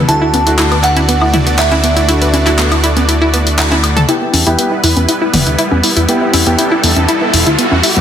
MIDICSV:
0, 0, Header, 1, 8, 480
1, 0, Start_track
1, 0, Key_signature, 1, "minor"
1, 0, Tempo, 500000
1, 83, Time_signature, 4, 2, 24, 8
1, 7689, End_track
2, 0, Start_track
2, 0, Title_t, "Synth bell"
2, 0, Program_c, 0, 98
2, 82, Note_on_c, 0, 81, 92
2, 710, Note_off_c, 0, 81, 0
2, 803, Note_on_c, 0, 78, 89
2, 1431, Note_off_c, 0, 78, 0
2, 1523, Note_on_c, 0, 76, 85
2, 2391, Note_off_c, 0, 76, 0
2, 7689, End_track
3, 0, Start_track
3, 0, Title_t, "Supersaw synth"
3, 0, Program_c, 1, 81
3, 83, Note_on_c, 1, 57, 81
3, 83, Note_on_c, 1, 62, 72
3, 83, Note_on_c, 1, 66, 74
3, 83, Note_on_c, 1, 74, 89
3, 3884, Note_off_c, 1, 66, 0
3, 3885, Note_off_c, 1, 57, 0
3, 3885, Note_off_c, 1, 62, 0
3, 3885, Note_off_c, 1, 74, 0
3, 3923, Note_on_c, 1, 55, 81
3, 3923, Note_on_c, 1, 59, 76
3, 3923, Note_on_c, 1, 64, 74
3, 3923, Note_on_c, 1, 71, 90
3, 5824, Note_off_c, 1, 71, 0
3, 5842, Note_on_c, 1, 69, 92
3, 7689, Note_off_c, 1, 55, 0
3, 7689, Note_off_c, 1, 59, 0
3, 7689, Note_off_c, 1, 64, 0
3, 7689, Note_off_c, 1, 69, 0
3, 7689, End_track
4, 0, Start_track
4, 0, Title_t, "Synth pluck"
4, 0, Program_c, 2, 84
4, 81, Note_on_c, 2, 64, 82
4, 131, Note_off_c, 2, 64, 0
4, 207, Note_on_c, 2, 64, 93
4, 234, Note_off_c, 2, 64, 0
4, 322, Note_on_c, 2, 59, 71
4, 395, Note_off_c, 2, 59, 0
4, 447, Note_on_c, 2, 64, 78
4, 492, Note_off_c, 2, 64, 0
4, 562, Note_on_c, 2, 64, 99
4, 591, Note_off_c, 2, 64, 0
4, 686, Note_on_c, 2, 59, 72
4, 754, Note_off_c, 2, 59, 0
4, 802, Note_on_c, 2, 64, 72
4, 851, Note_off_c, 2, 64, 0
4, 927, Note_on_c, 2, 64, 99
4, 954, Note_off_c, 2, 64, 0
4, 1042, Note_on_c, 2, 59, 78
4, 1115, Note_off_c, 2, 59, 0
4, 1167, Note_on_c, 2, 64, 73
4, 1212, Note_off_c, 2, 64, 0
4, 1282, Note_on_c, 2, 64, 99
4, 1312, Note_off_c, 2, 64, 0
4, 1407, Note_on_c, 2, 59, 76
4, 1475, Note_off_c, 2, 59, 0
4, 1522, Note_on_c, 2, 64, 80
4, 1571, Note_off_c, 2, 64, 0
4, 1646, Note_on_c, 2, 64, 99
4, 1674, Note_off_c, 2, 64, 0
4, 1762, Note_on_c, 2, 59, 73
4, 1835, Note_off_c, 2, 59, 0
4, 1886, Note_on_c, 2, 64, 76
4, 1932, Note_off_c, 2, 64, 0
4, 2001, Note_on_c, 2, 64, 95
4, 2031, Note_off_c, 2, 64, 0
4, 2126, Note_on_c, 2, 59, 75
4, 2194, Note_off_c, 2, 59, 0
4, 2241, Note_on_c, 2, 64, 69
4, 2290, Note_off_c, 2, 64, 0
4, 2366, Note_on_c, 2, 64, 101
4, 2394, Note_off_c, 2, 64, 0
4, 2482, Note_on_c, 2, 59, 80
4, 2555, Note_off_c, 2, 59, 0
4, 2607, Note_on_c, 2, 64, 73
4, 2652, Note_off_c, 2, 64, 0
4, 2722, Note_on_c, 2, 64, 95
4, 2751, Note_off_c, 2, 64, 0
4, 2847, Note_on_c, 2, 59, 77
4, 2914, Note_off_c, 2, 59, 0
4, 2962, Note_on_c, 2, 64, 79
4, 3011, Note_off_c, 2, 64, 0
4, 3086, Note_on_c, 2, 64, 99
4, 3114, Note_off_c, 2, 64, 0
4, 3202, Note_on_c, 2, 59, 75
4, 3231, Note_off_c, 2, 59, 0
4, 3442, Note_on_c, 2, 64, 79
4, 3515, Note_off_c, 2, 64, 0
4, 3567, Note_on_c, 2, 64, 98
4, 3612, Note_off_c, 2, 64, 0
4, 3807, Note_on_c, 2, 69, 100
4, 3834, Note_off_c, 2, 69, 0
4, 3922, Note_on_c, 2, 64, 99
4, 3952, Note_off_c, 2, 64, 0
4, 4048, Note_on_c, 2, 59, 74
4, 4115, Note_off_c, 2, 59, 0
4, 4163, Note_on_c, 2, 64, 72
4, 4212, Note_off_c, 2, 64, 0
4, 4288, Note_on_c, 2, 64, 102
4, 4315, Note_off_c, 2, 64, 0
4, 4403, Note_on_c, 2, 59, 84
4, 4476, Note_off_c, 2, 59, 0
4, 4528, Note_on_c, 2, 64, 77
4, 4572, Note_off_c, 2, 64, 0
4, 4643, Note_on_c, 2, 64, 96
4, 4672, Note_off_c, 2, 64, 0
4, 4767, Note_on_c, 2, 59, 78
4, 4835, Note_off_c, 2, 59, 0
4, 4882, Note_on_c, 2, 64, 80
4, 4931, Note_off_c, 2, 64, 0
4, 5007, Note_on_c, 2, 64, 101
4, 5034, Note_off_c, 2, 64, 0
4, 5123, Note_on_c, 2, 59, 78
4, 5196, Note_off_c, 2, 59, 0
4, 5247, Note_on_c, 2, 64, 76
4, 5292, Note_off_c, 2, 64, 0
4, 5362, Note_on_c, 2, 64, 100
4, 5392, Note_off_c, 2, 64, 0
4, 5487, Note_on_c, 2, 59, 74
4, 5555, Note_off_c, 2, 59, 0
4, 5603, Note_on_c, 2, 64, 72
4, 5652, Note_off_c, 2, 64, 0
4, 5727, Note_on_c, 2, 64, 100
4, 5754, Note_off_c, 2, 64, 0
4, 5842, Note_on_c, 2, 59, 81
4, 5915, Note_off_c, 2, 59, 0
4, 5966, Note_on_c, 2, 64, 73
4, 6012, Note_off_c, 2, 64, 0
4, 6082, Note_on_c, 2, 64, 97
4, 6112, Note_off_c, 2, 64, 0
4, 6207, Note_on_c, 2, 59, 79
4, 6275, Note_off_c, 2, 59, 0
4, 6322, Note_on_c, 2, 64, 82
4, 6371, Note_off_c, 2, 64, 0
4, 6447, Note_on_c, 2, 64, 103
4, 6474, Note_off_c, 2, 64, 0
4, 6562, Note_on_c, 2, 59, 73
4, 6635, Note_off_c, 2, 59, 0
4, 6687, Note_on_c, 2, 64, 77
4, 6732, Note_off_c, 2, 64, 0
4, 6803, Note_on_c, 2, 64, 102
4, 6832, Note_off_c, 2, 64, 0
4, 6927, Note_on_c, 2, 59, 75
4, 6994, Note_off_c, 2, 59, 0
4, 7042, Note_on_c, 2, 64, 74
4, 7091, Note_off_c, 2, 64, 0
4, 7167, Note_on_c, 2, 64, 105
4, 7194, Note_off_c, 2, 64, 0
4, 7282, Note_on_c, 2, 59, 83
4, 7355, Note_off_c, 2, 59, 0
4, 7406, Note_on_c, 2, 64, 73
4, 7452, Note_off_c, 2, 64, 0
4, 7522, Note_on_c, 2, 64, 97
4, 7551, Note_off_c, 2, 64, 0
4, 7647, Note_on_c, 2, 59, 79
4, 7689, Note_off_c, 2, 59, 0
4, 7689, End_track
5, 0, Start_track
5, 0, Title_t, "Grand piano"
5, 0, Program_c, 3, 0
5, 82, Note_on_c, 3, 57, 69
5, 83, Note_on_c, 3, 62, 61
5, 83, Note_on_c, 3, 66, 75
5, 418, Note_off_c, 3, 57, 0
5, 418, Note_off_c, 3, 62, 0
5, 418, Note_off_c, 3, 66, 0
5, 447, Note_on_c, 3, 57, 86
5, 447, Note_on_c, 3, 62, 78
5, 447, Note_on_c, 3, 66, 94
5, 642, Note_off_c, 3, 57, 0
5, 642, Note_off_c, 3, 62, 0
5, 642, Note_off_c, 3, 66, 0
5, 2003, Note_on_c, 3, 57, 69
5, 2003, Note_on_c, 3, 62, 61
5, 2003, Note_on_c, 3, 66, 75
5, 2338, Note_off_c, 3, 57, 0
5, 2338, Note_off_c, 3, 62, 0
5, 2338, Note_off_c, 3, 66, 0
5, 2367, Note_on_c, 3, 57, 88
5, 2367, Note_on_c, 3, 62, 80
5, 2367, Note_on_c, 3, 66, 97
5, 2562, Note_off_c, 3, 57, 0
5, 2562, Note_off_c, 3, 62, 0
5, 2562, Note_off_c, 3, 66, 0
5, 3922, Note_on_c, 3, 59, 67
5, 3923, Note_on_c, 3, 64, 65
5, 3923, Note_on_c, 3, 67, 76
5, 4257, Note_off_c, 3, 59, 0
5, 4258, Note_off_c, 3, 64, 0
5, 4258, Note_off_c, 3, 67, 0
5, 4287, Note_on_c, 3, 59, 85
5, 4288, Note_on_c, 3, 64, 79
5, 4288, Note_on_c, 3, 67, 95
5, 4482, Note_off_c, 3, 59, 0
5, 4482, Note_off_c, 3, 64, 0
5, 4482, Note_off_c, 3, 67, 0
5, 5843, Note_on_c, 3, 59, 71
5, 5843, Note_on_c, 3, 64, 63
5, 5843, Note_on_c, 3, 67, 77
5, 6178, Note_off_c, 3, 59, 0
5, 6178, Note_off_c, 3, 64, 0
5, 6178, Note_off_c, 3, 67, 0
5, 6208, Note_on_c, 3, 59, 87
5, 6208, Note_on_c, 3, 64, 83
5, 6208, Note_on_c, 3, 67, 99
5, 6402, Note_off_c, 3, 59, 0
5, 6402, Note_off_c, 3, 64, 0
5, 6402, Note_off_c, 3, 67, 0
5, 7689, End_track
6, 0, Start_track
6, 0, Title_t, "Analog synth bass"
6, 0, Program_c, 4, 38
6, 83, Note_on_c, 4, 38, 86
6, 3900, Note_off_c, 4, 38, 0
6, 4162, Note_on_c, 4, 40, 93
6, 4266, Note_off_c, 4, 40, 0
6, 4288, Note_on_c, 4, 40, 78
6, 4383, Note_off_c, 4, 40, 0
6, 4643, Note_on_c, 4, 40, 90
6, 4746, Note_off_c, 4, 40, 0
6, 4768, Note_on_c, 4, 40, 79
6, 4863, Note_off_c, 4, 40, 0
6, 5123, Note_on_c, 4, 28, 94
6, 5226, Note_off_c, 4, 28, 0
6, 5248, Note_on_c, 4, 38, 81
6, 5343, Note_off_c, 4, 38, 0
6, 5489, Note_on_c, 4, 40, 77
6, 5584, Note_off_c, 4, 40, 0
6, 5727, Note_on_c, 4, 40, 80
6, 5823, Note_off_c, 4, 40, 0
6, 6083, Note_on_c, 4, 40, 92
6, 6186, Note_off_c, 4, 40, 0
6, 6208, Note_on_c, 4, 40, 82
6, 6303, Note_off_c, 4, 40, 0
6, 6563, Note_on_c, 4, 40, 88
6, 6667, Note_off_c, 4, 40, 0
6, 6688, Note_on_c, 4, 40, 81
6, 6783, Note_off_c, 4, 40, 0
6, 7044, Note_on_c, 4, 28, 92
6, 7147, Note_off_c, 4, 28, 0
6, 7169, Note_on_c, 4, 38, 84
6, 7264, Note_off_c, 4, 38, 0
6, 7408, Note_on_c, 4, 40, 77
6, 7503, Note_off_c, 4, 40, 0
6, 7648, Note_on_c, 4, 40, 81
6, 7689, Note_off_c, 4, 40, 0
6, 7689, End_track
7, 0, Start_track
7, 0, Title_t, "Riser"
7, 0, Program_c, 5, 103
7, 3923, Note_on_c, 5, 60, 76
7, 7689, Note_off_c, 5, 60, 0
7, 7689, End_track
8, 0, Start_track
8, 0, Title_t, "Drums"
8, 83, Note_on_c, 9, 42, 74
8, 179, Note_off_c, 9, 42, 0
8, 322, Note_on_c, 9, 63, 86
8, 323, Note_on_c, 9, 42, 76
8, 418, Note_off_c, 9, 63, 0
8, 419, Note_off_c, 9, 42, 0
8, 448, Note_on_c, 9, 42, 48
8, 544, Note_off_c, 9, 42, 0
8, 563, Note_on_c, 9, 42, 71
8, 564, Note_on_c, 9, 39, 108
8, 659, Note_off_c, 9, 42, 0
8, 660, Note_off_c, 9, 39, 0
8, 687, Note_on_c, 9, 76, 61
8, 688, Note_on_c, 9, 42, 35
8, 783, Note_off_c, 9, 76, 0
8, 784, Note_off_c, 9, 42, 0
8, 803, Note_on_c, 9, 39, 33
8, 803, Note_on_c, 9, 42, 74
8, 899, Note_off_c, 9, 39, 0
8, 899, Note_off_c, 9, 42, 0
8, 927, Note_on_c, 9, 42, 52
8, 927, Note_on_c, 9, 63, 59
8, 1023, Note_off_c, 9, 42, 0
8, 1023, Note_off_c, 9, 63, 0
8, 1043, Note_on_c, 9, 42, 71
8, 1139, Note_off_c, 9, 42, 0
8, 1167, Note_on_c, 9, 76, 60
8, 1263, Note_off_c, 9, 76, 0
8, 1282, Note_on_c, 9, 42, 75
8, 1282, Note_on_c, 9, 47, 82
8, 1378, Note_off_c, 9, 42, 0
8, 1378, Note_off_c, 9, 47, 0
8, 1408, Note_on_c, 9, 42, 50
8, 1504, Note_off_c, 9, 42, 0
8, 1523, Note_on_c, 9, 42, 76
8, 1524, Note_on_c, 9, 39, 103
8, 1619, Note_off_c, 9, 42, 0
8, 1620, Note_off_c, 9, 39, 0
8, 1647, Note_on_c, 9, 63, 85
8, 1648, Note_on_c, 9, 42, 34
8, 1743, Note_off_c, 9, 63, 0
8, 1744, Note_off_c, 9, 42, 0
8, 1763, Note_on_c, 9, 42, 78
8, 1859, Note_off_c, 9, 42, 0
8, 1888, Note_on_c, 9, 42, 47
8, 1984, Note_off_c, 9, 42, 0
8, 2003, Note_on_c, 9, 42, 73
8, 2099, Note_off_c, 9, 42, 0
8, 2127, Note_on_c, 9, 42, 36
8, 2223, Note_off_c, 9, 42, 0
8, 2242, Note_on_c, 9, 63, 88
8, 2243, Note_on_c, 9, 42, 74
8, 2338, Note_off_c, 9, 63, 0
8, 2339, Note_off_c, 9, 42, 0
8, 2368, Note_on_c, 9, 42, 50
8, 2369, Note_on_c, 9, 39, 35
8, 2464, Note_off_c, 9, 42, 0
8, 2465, Note_off_c, 9, 39, 0
8, 2483, Note_on_c, 9, 42, 75
8, 2484, Note_on_c, 9, 39, 106
8, 2579, Note_off_c, 9, 42, 0
8, 2580, Note_off_c, 9, 39, 0
8, 2607, Note_on_c, 9, 76, 62
8, 2608, Note_on_c, 9, 42, 36
8, 2703, Note_off_c, 9, 76, 0
8, 2704, Note_off_c, 9, 42, 0
8, 2723, Note_on_c, 9, 42, 80
8, 2819, Note_off_c, 9, 42, 0
8, 2848, Note_on_c, 9, 42, 53
8, 2848, Note_on_c, 9, 63, 61
8, 2944, Note_off_c, 9, 42, 0
8, 2944, Note_off_c, 9, 63, 0
8, 2963, Note_on_c, 9, 42, 73
8, 3059, Note_off_c, 9, 42, 0
8, 3203, Note_on_c, 9, 42, 80
8, 3299, Note_off_c, 9, 42, 0
8, 3329, Note_on_c, 9, 42, 51
8, 3425, Note_off_c, 9, 42, 0
8, 3443, Note_on_c, 9, 42, 76
8, 3444, Note_on_c, 9, 39, 109
8, 3539, Note_off_c, 9, 42, 0
8, 3540, Note_off_c, 9, 39, 0
8, 3567, Note_on_c, 9, 63, 90
8, 3568, Note_on_c, 9, 42, 34
8, 3663, Note_off_c, 9, 63, 0
8, 3664, Note_off_c, 9, 42, 0
8, 3681, Note_on_c, 9, 76, 61
8, 3683, Note_on_c, 9, 42, 75
8, 3777, Note_off_c, 9, 76, 0
8, 3779, Note_off_c, 9, 42, 0
8, 3807, Note_on_c, 9, 47, 63
8, 3808, Note_on_c, 9, 42, 49
8, 3903, Note_off_c, 9, 47, 0
8, 3904, Note_off_c, 9, 42, 0
8, 3923, Note_on_c, 9, 42, 78
8, 4019, Note_off_c, 9, 42, 0
8, 4162, Note_on_c, 9, 63, 88
8, 4163, Note_on_c, 9, 46, 99
8, 4258, Note_off_c, 9, 63, 0
8, 4259, Note_off_c, 9, 46, 0
8, 4287, Note_on_c, 9, 42, 52
8, 4383, Note_off_c, 9, 42, 0
8, 4403, Note_on_c, 9, 42, 77
8, 4499, Note_off_c, 9, 42, 0
8, 4643, Note_on_c, 9, 46, 101
8, 4739, Note_off_c, 9, 46, 0
8, 4766, Note_on_c, 9, 63, 65
8, 4768, Note_on_c, 9, 42, 52
8, 4862, Note_off_c, 9, 63, 0
8, 4864, Note_off_c, 9, 42, 0
8, 4882, Note_on_c, 9, 42, 75
8, 4978, Note_off_c, 9, 42, 0
8, 5122, Note_on_c, 9, 46, 103
8, 5122, Note_on_c, 9, 47, 90
8, 5218, Note_off_c, 9, 46, 0
8, 5218, Note_off_c, 9, 47, 0
8, 5247, Note_on_c, 9, 42, 52
8, 5343, Note_off_c, 9, 42, 0
8, 5362, Note_on_c, 9, 42, 75
8, 5458, Note_off_c, 9, 42, 0
8, 5487, Note_on_c, 9, 63, 89
8, 5583, Note_off_c, 9, 63, 0
8, 5602, Note_on_c, 9, 46, 101
8, 5698, Note_off_c, 9, 46, 0
8, 5727, Note_on_c, 9, 42, 52
8, 5823, Note_off_c, 9, 42, 0
8, 5842, Note_on_c, 9, 42, 75
8, 5938, Note_off_c, 9, 42, 0
8, 6082, Note_on_c, 9, 46, 107
8, 6082, Note_on_c, 9, 63, 89
8, 6178, Note_off_c, 9, 46, 0
8, 6178, Note_off_c, 9, 63, 0
8, 6207, Note_on_c, 9, 42, 53
8, 6303, Note_off_c, 9, 42, 0
8, 6322, Note_on_c, 9, 42, 75
8, 6418, Note_off_c, 9, 42, 0
8, 6562, Note_on_c, 9, 46, 106
8, 6658, Note_off_c, 9, 46, 0
8, 6687, Note_on_c, 9, 42, 51
8, 6687, Note_on_c, 9, 63, 64
8, 6783, Note_off_c, 9, 42, 0
8, 6783, Note_off_c, 9, 63, 0
8, 6802, Note_on_c, 9, 42, 72
8, 6898, Note_off_c, 9, 42, 0
8, 7042, Note_on_c, 9, 46, 109
8, 7138, Note_off_c, 9, 46, 0
8, 7167, Note_on_c, 9, 42, 50
8, 7263, Note_off_c, 9, 42, 0
8, 7282, Note_on_c, 9, 42, 76
8, 7378, Note_off_c, 9, 42, 0
8, 7408, Note_on_c, 9, 63, 89
8, 7504, Note_off_c, 9, 63, 0
8, 7522, Note_on_c, 9, 46, 103
8, 7618, Note_off_c, 9, 46, 0
8, 7647, Note_on_c, 9, 42, 51
8, 7648, Note_on_c, 9, 47, 76
8, 7689, Note_off_c, 9, 42, 0
8, 7689, Note_off_c, 9, 47, 0
8, 7689, End_track
0, 0, End_of_file